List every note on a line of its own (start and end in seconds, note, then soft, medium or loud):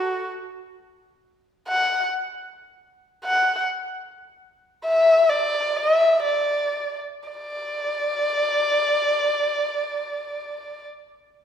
0.00 0.27 F#4 medium
1.68 2.05 F#5 medium
3.25 3.61 F#5 medium
4.86 5.31 E5 medium
5.30 5.78 D5 medium
5.76 5.94 D#5 medium
5.94 6.24 E5 medium
6.24 6.98 D5 medium
7.29 10.84 D5 medium